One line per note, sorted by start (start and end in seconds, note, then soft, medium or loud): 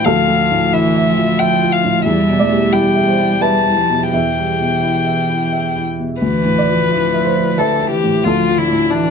0.00 0.19 A2 soft
0.05 2.02 D2 medium
0.05 0.75 F3 medium
0.05 1.69 A4 medium
0.05 0.75 F5 medium
0.28 0.64 A3 soft
0.51 0.87 A2 soft
0.73 1.08 E3 medium
0.73 1.09 E4 medium
0.73 1.41 E5 medium
0.96 1.31 E5 soft
1.07 2.06 F3 medium
1.18 1.53 F4 medium
1.39 1.75 E5 medium
1.39 1.74 G5 medium
1.63 1.97 F4 soft
1.73 2.05 F5 medium
1.85 2.06 A2 soft
2.05 4.09 E2 medium
2.05 2.41 G3 medium
2.05 2.74 E5 medium
2.29 2.64 B2 soft
2.39 2.74 A3 medium
2.39 3.03 D5 medium
2.50 2.86 G3 soft
2.73 3.41 G3 medium
2.73 3.09 E4 soft
2.73 3.43 G5 medium
2.95 3.32 E5 soft
3.08 3.39 C5 medium
3.18 3.55 E4 soft
3.41 3.78 G3 soft
3.41 4.09 B4 medium
3.41 3.80 E5 soft
3.41 4.11 A5 medium
3.66 4.04 E4 soft
3.77 4.14 F3 soft
3.89 4.27 B2 soft
4.12 6.18 E2 soft
4.12 6.01 E3 soft
4.12 5.05 E5 soft
4.12 5.83 G5 soft
4.37 4.74 G3 soft
4.61 4.97 B2 soft
4.83 5.20 E4 soft
5.06 5.43 E5 soft
5.29 5.66 E4 soft
5.53 5.90 E5 soft
5.76 6.13 E4 soft
6.00 6.22 B2 soft
6.21 8.22 D2 soft
6.21 6.91 E3 soft
6.21 7.60 B4 medium
6.45 6.82 A2 soft
6.58 7.21 D5 medium
6.69 7.04 F3 soft
6.89 7.59 F3 soft
6.89 7.27 E4 soft
7.14 7.49 E5 soft
7.25 7.56 C5 medium
7.37 7.72 E4 soft
7.58 7.93 D3 soft
7.58 7.90 A4 soft
7.58 8.22 B4 medium
7.58 7.94 E5 soft
7.81 8.17 E4 soft
7.91 8.24 E3 soft
7.91 8.26 G4 soft
8.04 8.39 A2 soft
8.24 9.10 D2 soft
8.24 8.60 F3 soft
8.24 8.60 F4 soft
8.24 9.10 A4 medium
8.49 8.84 F3 soft
8.58 8.92 D3 medium
8.58 8.92 E4 soft
8.71 9.06 A2 soft
8.91 9.10 E3 medium
8.91 9.10 D4 soft
8.91 9.10 E4 soft